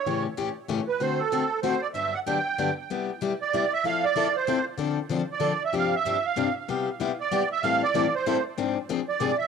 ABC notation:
X:1
M:3/4
L:1/8
Q:"Swing" 1/4=190
K:G
V:1 name="Accordion"
^c z4 B | c A3 c d | e f g3 z | [K:C] z3 d2 e |
f d2 c2 z | z3 d2 e | f e2 f2 z | z3 d2 e |
f d2 c2 z | z3 d2 e |]
V:2 name="Steel-string acoustic guitar"
[A,,^C,E,A,^CG] z [A,,C,E,A,CG] z [A,,C,E,A,CG] z | [D,A,CFA] z [D,A,CFA] z [D,A,CFA] z | [G,,D,F,B,DG] z [G,,D,F,B,DG] z [G,,D,F,B,DG] z | [K:C] [C,G,B,EG] z [C,G,B,EG] z [C,G,B,EG] z |
[F,CEA] z [F,CEA] z [F,CEA] z | [D,F,CDA] z [D,F,CDA] z [D,F,CDA] z | [G,,C,F,CDG] z [G,,C,F,CDG] z [G,,C,F,CDG] z | [C,G,B,EG] z [C,G,B,EG] z [C,G,B,EG] z |
[A,,E,G,CEA] z [A,,E,G,CEA] z [A,,E,G,CEA] z | [_A,,C,F,CD_A] z [A,,C,F,CDA] z [A,,C,F,CDA] z |]